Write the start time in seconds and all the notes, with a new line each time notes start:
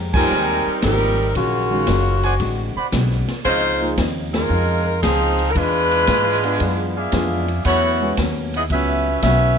Already playing: F2 G#3 C4 G4 A#4
0.13 F3 G3 A#3 C4 D#4 G4 A#4 C5 G5 G#5, kick, crash
0.30 D#2 G#3 C4 G4 A#4
0.66 muted upright bass stroke
0.81 G#1 F3 G3 G#3 A#3 C4 D#4 G4 A#4, kick, snare, hi-hat pedal, ride
1.35 A#1 C#3 D#3 F#3 A#3 C#4 F4 F#4, kick, ride
1.71 D#3 G#3 C#4 F#4
1.87 F#1 D#3 F#3 C#4 F4, kick, snare, hi-hat pedal, ride
2.23 C5 D5 F#5 G#5, ride
2.40 A1 D3 G#3 C4 F#4, kick, ride
2.76 C5 D5 F#5 B5, muted upright bass stroke
2.92 B1 D3 G#3 C4 F#4, kick, snare, hi-hat pedal, ride
3.10 snare
3.28 snare, ride
3.45 C#2 C#3 F3 G#3 C4 D#4 F4 C5 C#5 D#5 F5, kick, ride
3.81 F3 A#3 D#4 G#4
3.98 D#2 C#3 F3 C4 D#4, kick, snare, hi-hat pedal, ride
4.34 G#3 D#4 F4 A#4, snare, ride
4.49 F2 C#3 F3 C4 D#4
5.03 C#2 C#3 F3 C4 D#4 G#4, kick, snare, hi-hat pedal, ride
5.39 ride
5.51 A#4
5.55 E2 E3 G#3 D4 F4 B4, kick, ride
5.91 ride
6.07 G#2 E3 G#3 D4 F4, kick, snare, hi-hat pedal, ride
6.43 B3 D4 F4 G#4, ride
6.60 F#2 E3 G#3 D4 F4, kick, ride
6.97 G#4 D5 E5 F5
7.12 F2 E3 G#3 B3 D4 F4 G#4, kick, snare, hi-hat pedal, ride
7.48 ride
7.65 E2 A2 F#3 B3 C#4 E4 F#4 A4 B4 C#5 F#5, kick, ride
8.01 G#3 C#4 F#4 B4
8.17 D#2 A2 F#3 B3 C#4, kick, snare, hi-hat pedal, ride
8.54 B3 E4 G#4 D#5, ride
8.70 C#2 A2 F#3 B3 C#4 F#4 B4 E5, kick, ride
9.22 B1 A2 F#3 B3 C#4 F#4 B4 E5, kick, snare, hi-hat pedal, ride